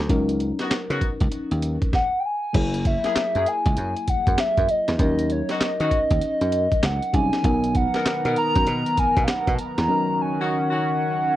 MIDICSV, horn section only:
0, 0, Header, 1, 2, 480
1, 0, Start_track
1, 0, Tempo, 612245
1, 75, Time_signature, 4, 2, 24, 8
1, 8907, End_track
2, 0, Start_track
2, 0, Title_t, "Horn section"
2, 0, Program_c, 0, 61
2, 464, Note_on_c, 0, 59, 76
2, 466, Note_on_c, 0, 63, 67
2, 468, Note_on_c, 0, 66, 89
2, 592, Note_off_c, 0, 59, 0
2, 593, Note_off_c, 0, 63, 0
2, 594, Note_off_c, 0, 66, 0
2, 704, Note_on_c, 0, 59, 69
2, 706, Note_on_c, 0, 63, 62
2, 708, Note_on_c, 0, 66, 79
2, 832, Note_off_c, 0, 59, 0
2, 833, Note_off_c, 0, 63, 0
2, 834, Note_off_c, 0, 66, 0
2, 2385, Note_on_c, 0, 58, 75
2, 2388, Note_on_c, 0, 64, 75
2, 2390, Note_on_c, 0, 68, 87
2, 2513, Note_off_c, 0, 58, 0
2, 2514, Note_off_c, 0, 64, 0
2, 2515, Note_off_c, 0, 68, 0
2, 2624, Note_on_c, 0, 58, 67
2, 2626, Note_on_c, 0, 64, 67
2, 2629, Note_on_c, 0, 68, 77
2, 2752, Note_off_c, 0, 58, 0
2, 2753, Note_off_c, 0, 64, 0
2, 2755, Note_off_c, 0, 68, 0
2, 4305, Note_on_c, 0, 61, 77
2, 4307, Note_on_c, 0, 63, 74
2, 4309, Note_on_c, 0, 66, 87
2, 4433, Note_off_c, 0, 61, 0
2, 4434, Note_off_c, 0, 63, 0
2, 4435, Note_off_c, 0, 66, 0
2, 4545, Note_on_c, 0, 61, 74
2, 4547, Note_on_c, 0, 63, 67
2, 4549, Note_on_c, 0, 66, 80
2, 4673, Note_off_c, 0, 61, 0
2, 4674, Note_off_c, 0, 63, 0
2, 4675, Note_off_c, 0, 66, 0
2, 6225, Note_on_c, 0, 59, 79
2, 6228, Note_on_c, 0, 63, 70
2, 6230, Note_on_c, 0, 70, 90
2, 6353, Note_off_c, 0, 59, 0
2, 6354, Note_off_c, 0, 63, 0
2, 6355, Note_off_c, 0, 70, 0
2, 6465, Note_on_c, 0, 59, 72
2, 6467, Note_on_c, 0, 63, 64
2, 6469, Note_on_c, 0, 70, 83
2, 6593, Note_off_c, 0, 59, 0
2, 6594, Note_off_c, 0, 63, 0
2, 6595, Note_off_c, 0, 70, 0
2, 8145, Note_on_c, 0, 61, 87
2, 8147, Note_on_c, 0, 63, 74
2, 8150, Note_on_c, 0, 66, 93
2, 8273, Note_off_c, 0, 61, 0
2, 8274, Note_off_c, 0, 63, 0
2, 8275, Note_off_c, 0, 66, 0
2, 8387, Note_on_c, 0, 61, 74
2, 8389, Note_on_c, 0, 63, 67
2, 8390, Note_on_c, 0, 66, 87
2, 8513, Note_off_c, 0, 61, 0
2, 8515, Note_off_c, 0, 63, 0
2, 8515, Note_off_c, 0, 66, 0
2, 8907, End_track
0, 0, End_of_file